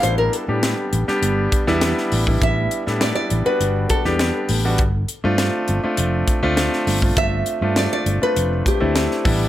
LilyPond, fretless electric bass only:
\new Staff \with { instrumentName = "Fretless electric bass" } { \clef bass \time 4/4 \key g \mixolydian \tempo 4 = 101 a,,8 r16 a,8 r16 a,,16 r16 g,,8 r16 e,8 r16 a,,8 | a,,8 r16 a,8 r16 a,,16 r16 g,,8 r16 e,8 r16 a,,8 | g,,8 r16 g,8 r16 g,,16 r16 f,,8 r16 d,8 r16 g,,8 | g,,8 r16 g,8 r16 g,,16 r16 f,,8 r16 d,8 r16 a,,8 | }